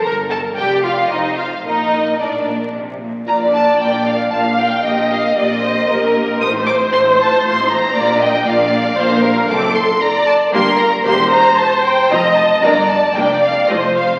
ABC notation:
X:1
M:3/4
L:1/16
Q:1/4=115
K:Bb
V:1 name="Violin section"
b2 a2 g2 f2 e2 f2 | e4 d4 z4 | b2 a2 g2 f2 a2 g2- | g2 f2 e8 |
e'2 d'2 c'2 a2 c'2 b2- | b2 g2 f8 | d'2 c'2 b2 a2 c'2 b2 | c'2 b2 a2 g2 b2 a2 |
b2 a2 g2 f2 e2 f2 |]
V:2 name="Violin section"
B2 A2 G2 F2 E2 F2 | E4 D4 z4 | d8 f4 | e4 d2 c2 B4 |
c12 | d2 e2 d4 c2 B2 | A4 d4 B4 | c8 e4 |
d4 d4 c4 |]
V:3 name="Viola section"
B4 d4 c4 | B8- B2 z2 | [FB] [Dd] [FB] [Dd] [FB] [Dd] [FB] [Dd] [FB] [Dd] [FB] [Dd] | [B,G] [CB] [B,G] [CB] [B,G] [CB] [B,G] [CB] [B,G] [CB] [B,G] [CB] |
[A,F] [CE] [A,F] [CE] [A,F] [CE] [A,F] [CE] [A,F] [CE] [A,F] [CE] | [B,F] [DB] [B,F] [DB] [B,F] [DB] [B,F] [DB] [B,F] [DB] [B,F] [DB] | [CA]2 z6 [B,G]2 z2 | [B,G]2 z6 [CF]2 z2 |
[B,D]2 z2 [B,D]2 z2 [A,F]2 z2 |]
V:4 name="Cello section" clef=bass
G,,4 F,,4 F,,4 | B,,4 A,,2 B,,2 C,2 B,,2 | B,,4 B,,4 B,,4 | B,,4 B,,4 B,,4 |
A,,4 A,,4 A,,4 | B,,4 B,,4 B,,4 | ^F,,4 z4 G,,4 | =E,,4 z4 F,,4 |
G,,4 F,,4 F,,4 |]
V:5 name="Double bass section" clef=bass
G,,,4 F,,,4 F,,,4 | B,,,8- B,,,2 z2 | B,,,4 B,,,4 B,,,4 | B,,,4 B,,,4 B,,,4 |
A,,,4 A,,,4 A,,,4 | B,,,4 B,,,4 B,,,4 | ^F,,,4 z4 G,,,4 | =E,,,4 z4 F,,,4 |
G,,,4 F,,,4 F,,,4 |]